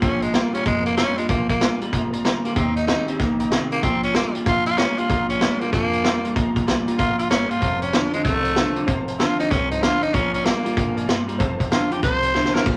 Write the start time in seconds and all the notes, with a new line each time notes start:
0.02 A#1 A#2 F3 C#4 D5 F5 G5, kick, closed hi-hat
0.22 G#3 D5 F5 A#5, closed hi-hat
0.33 A#2 F3 G3 G#3 A#3 D4 F4 D5 A#5, snare, closed hi-hat
0.53 A#2 G3 C#4 D4 F4 D5 F5 A#5, muted upright bass stroke, closed hi-hat
0.65 F1 F2 A#2 F3 G#3 D5 F5 A#5, kick, closed hi-hat
0.86 A#3 D5 F5 C6, closed hi-hat
0.97 A#2 F3 G3 G#3 C#4 D4 F4 D5 F5 A#5, snare, closed hi-hat
1.17 A#2 G3 G#3 D4 F4 D5 A#5, muted upright bass stroke, closed hi-hat
1.29 A#1 A#2 F3 A#3 D5 F5 C6, kick, closed hi-hat
1.49 A#3 D5 F5 A#5, kick, closed hi-hat
1.60 A#2 F3 G3 G#3 D4 F4 D5 F5 A#5, snare, closed hi-hat
1.81 A#2 G3 D4 F4 D5 F5 A#5, muted upright bass stroke, closed hi-hat
1.92 F1 A#2 C3 F3 D5 F5 A#5, kick, closed hi-hat
2.13 D5 F5 A#5, closed hi-hat
2.24 A#2 D3 G3 D5 F5 A#5, snare, closed hi-hat
2.44 A#2 G3 A#3 D5 F5 G#5, muted upright bass stroke, closed hi-hat
2.55 D#2 D#3 A#3 C4 D#5 G5 A#5, kick, closed hi-hat
2.76 D#4 D#5 A#5, closed hi-hat
2.87 D#3 G3 C4 C#4 D#4 G4 D#5 G5 A#5, snare, closed hi-hat
3.07 D#3 C4 C#4 G4 D#5 G5 A#5, muted upright bass stroke, closed hi-hat
3.19 A#1 C#3 D#3 A#3 D#5 G5 A#5, kick, snare, closed hi-hat
3.39 D#5 G5 A#5, closed hi-hat
3.51 C3 D#3 C4 D#5 G5 C#6, snare, closed hi-hat
3.71 D#3 A#3 C4 D#5 G5 A#5, muted upright bass stroke, closed hi-hat
3.83 A#1 A#2 F3 C4 D5 F5 A#5, kick, closed hi-hat
4.03 C#4 D5 F5 G5, closed hi-hat
4.14 A#2 F3 G3 G#3 A#3 D4 F4 D5 F5 A#5, snare, closed hi-hat
4.34 A#2 G3 D4 F4 D5 F5 G5, muted upright bass stroke, closed hi-hat
4.45 F2 A#2 F3 F4 D5 F5 A#5, kick, snare, closed hi-hat
4.65 F4 D5 F5 G5, closed hi-hat
4.77 A#2 F3 G3 G#3 C#4 D4 F4 D5 F5 A#5, snare, closed hi-hat
4.97 A#2 G3 D4 F4 D5 F5 G#5, muted upright bass stroke, closed hi-hat
5.08 A#1 A#2 F3 D5 F5 A#5, kick, closed hi-hat
5.29 C#4 D5 F5 G5, closed hi-hat
5.40 A#2 F3 G3 G#3 D4 F4 D5 F5 A#5, snare, closed hi-hat
5.60 A#2 G3 A#3 D4 F4 D5 F5 G5, muted upright bass stroke, closed hi-hat
5.71 F2 A#2 F3 A#3 D5 F5 G#5, kick, snare, closed hi-hat
5.91 D5 F5 G#5, closed hi-hat
6.03 A#2 F3 G3 G#3 D4 F4 D5 F5 A#5, snare, closed hi-hat
6.24 A#2 G3 D4 F4 D5 F5 C6, muted upright bass stroke, closed hi-hat
6.36 A#1 A#2 F3 D5 F5 A#5, kick, closed hi-hat
6.56 D5 F5 A#5, kick, closed hi-hat
6.66 A#1 A#2 F3 G3 G#3 D4 F4 D5 F5 A#5, snare, closed hi-hat
6.87 A#2 G3 D4 F4 D5 F5 A#5, muted upright bass stroke, closed hi-hat
6.97 G#1 G#2 A#2 F3 F4 D5 F5 A#5, kick, closed hi-hat
7.18 F4 D5 F5 A#5, muted upright bass stroke, closed hi-hat
7.29 G1 G2 A#2 G3 C#4 D5 F5 A#5, snare, closed hi-hat
7.49 A#2 G3 F4 D5 F5 G5, muted upright bass stroke, closed hi-hat
7.61 F1 F2 C3 C5 F5 A5, kick, closed hi-hat
7.81 C#4 C5 F5 G5, closed hi-hat
7.92 F2 D3 D#3 A3 C4 F4 C5 F5 A5, snare, closed hi-hat
8.12 F2 D3 G#3 C4 F4 C5 F5 A5, muted upright bass stroke, closed hi-hat
8.23 C2 F2 C3 A3 C5 F5 A5, kick, snare, closed hi-hat
8.43 C5 F5 A5, closed hi-hat
8.55 F2 D3 D#3 A3 C4 F4 C5 F5 C6, snare, closed hi-hat
8.76 F2 D3 C5 F5 A5, muted upright bass stroke, closed hi-hat
8.87 F1 F2 C3 C5 F5 A5, kick, closed hi-hat
9.08 C5 F5 A5, closed hi-hat
9.19 F2 D3 D#3 A3 C4 F4 C5 F5 A5, snare, closed hi-hat
9.39 F2 D3 C4 D#4 F4 C5 F5 A5, muted upright bass stroke, closed hi-hat
9.50 C2 F2 G2 C3 C#4 C5 F5 G5, kick, snare, closed hi-hat
9.70 D#4 C5 F5 A5, closed hi-hat
9.81 F2 D3 F4 C5 F5 A5, snare, closed hi-hat
10.01 F2 D3 D#4 C5 F5 A5, muted upright bass stroke, closed hi-hat
10.13 A#1 A#2 F3 C#4 D5 F5 A#5, kick, closed hi-hat
10.33 C#4 D5 F5 A#5, closed hi-hat
10.45 A#2 F3 G3 G#3 A#3 D4 F4 D5 F5 A#5, snare, closed hi-hat
10.65 A#2 G3 D4 F4 D5 F5 A#5, muted upright bass stroke, closed hi-hat
10.76 F1 G#2 A#2 F3 D5 F5 G5, kick, closed hi-hat
10.97 D5 F5 G#5, closed hi-hat
11.07 G2 A#2 G3 D5 F5 C6, snare, closed hi-hat
11.27 A#2 G3 D5 F5 A#5, muted upright bass stroke, closed hi-hat
11.38 F1 F2 C3 C5 F5 A5, kick, closed hi-hat
11.59 C5 F5 A5, kick, closed hi-hat
11.70 F2 D3 D#3 A3 C4 F4 C5 F5 A5, snare, closed hi-hat
11.90 F2 D3 C4 F4 G4 C5 F5 C6, muted upright bass stroke, closed hi-hat
12.03 C2 F2 C3 C5 F5 A5, kick, snare, closed hi-hat
12.22 C5 F5 A5, closed hi-hat
12.33 F2 D3 D#3 A3 C4 F4 C5 F5 A5, snare
12.45 snare
12.54 F2 D3 C4 F4 A#4 C5 F5 C6, muted upright bass stroke, snare
12.66 A#1 A#2 F3 G#3 C4 D4, kick, ride